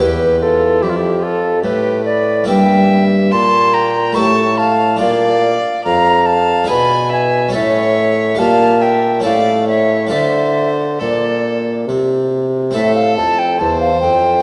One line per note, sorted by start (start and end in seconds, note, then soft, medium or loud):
0.00 0.78 E2 soft
0.00 0.80 E2 medium
0.00 0.77 B3 soft
0.00 2.43 E4 soft
0.00 2.44 G4 soft
0.00 0.41 G4 medium
0.00 0.44 B4 medium
0.42 0.83 F4 medium
0.42 0.84 A4 medium
0.81 1.60 F2 medium
0.81 1.65 F2 medium
0.81 1.21 E4 medium
0.81 0.91 G4 medium
0.89 0.98 F4 medium
0.97 1.25 G4 medium
1.22 1.62 F4 medium
1.22 1.62 A4 medium
1.62 2.45 A2 medium
1.62 2.48 A2 medium
1.62 2.04 G4 medium
1.62 2.05 B4 loud
2.04 2.47 B4 medium
2.04 2.47 D5 medium
2.44 4.10 A#3 medium
2.44 4.11 E4 medium
2.44 4.12 G4 soft
2.44 3.04 G5 loud
2.48 3.31 G2 medium
2.48 3.29 G2 medium
2.48 3.34 E5 medium
3.32 4.18 A#2 medium
3.32 4.13 A#2 medium
3.32 3.75 A5 medium
3.32 3.75 C6 loud
3.74 4.15 G5 medium
3.74 4.16 A#5 loud
4.12 4.97 A3 soft
4.12 4.97 E4 medium
4.12 4.98 G4 soft
4.12 4.58 A5 medium
4.12 4.59 C#6 loud
4.17 4.98 A2 medium
4.17 5.01 A2 medium
4.58 4.99 F5 medium
4.58 4.99 A5 loud
4.96 6.63 D4 medium
4.96 6.64 F4 medium
4.96 5.83 D5 medium
4.96 5.83 F5 loud
5.01 5.54 A#2 medium
5.01 5.57 A#2 medium
5.85 6.65 F2 medium
5.85 6.26 F5 medium
5.85 6.28 A#5 loud
6.26 6.70 F5 medium
6.26 6.69 A5 loud
6.64 7.49 D4 medium
6.64 7.49 E4 soft
6.64 7.50 G#4 medium
6.68 7.50 B2 medium
6.68 7.53 B2 medium
6.68 7.11 G#5 medium
6.68 7.11 B5 loud
7.10 7.52 E5 medium
7.10 7.54 G#5 loud
7.49 8.34 C#4 medium
7.49 8.34 E4 medium
7.49 8.35 A4 medium
7.49 8.36 C#5 medium
7.53 8.34 A2 medium
7.53 8.38 A2 medium
7.53 8.40 E5 loud
8.35 9.20 D4 medium
8.35 9.21 G4 medium
8.35 8.83 F5 medium
8.35 8.83 A5 loud
8.39 9.21 A#2 medium
8.39 9.23 A#2 medium
8.81 9.23 E5 medium
8.81 9.24 G5 loud
9.20 10.07 C#4 soft
9.20 10.08 E4 soft
9.20 10.08 A4 soft
9.20 9.67 D5 medium
9.25 10.08 A2 soft
9.25 10.14 A2 medium
9.25 9.67 F5 loud
9.68 10.11 C#5 medium
9.68 10.10 E5 loud
10.07 12.68 D4 soft
10.07 12.69 F4 soft
10.07 12.70 A4 medium
10.07 10.69 E5 loud
10.11 10.96 D3 medium
10.11 11.00 D3 medium
10.11 11.01 C5 medium
11.00 11.84 A#2 medium
11.00 11.86 A#2 medium
11.00 11.87 A4 medium
11.00 11.83 D5 medium
11.87 12.73 C3 medium
11.87 12.72 C3 soft
12.71 14.38 C4 medium
12.71 14.39 E4 medium
12.71 14.40 A4 medium
12.71 12.94 E5 loud
12.75 13.20 A2 medium
12.75 13.14 A2 medium
12.75 13.57 A4 medium
12.95 13.16 F5 loud
13.17 13.57 F2 medium
13.17 13.61 F2 medium
13.17 13.40 A5 loud
13.39 13.61 G5 loud
13.59 13.98 E2 medium
13.59 13.91 E2 medium
13.59 14.42 C5 medium
13.59 13.80 A5 loud
13.81 14.00 F5 medium
14.01 14.40 F2 medium
14.01 14.42 F2 medium
14.01 14.42 G5 loud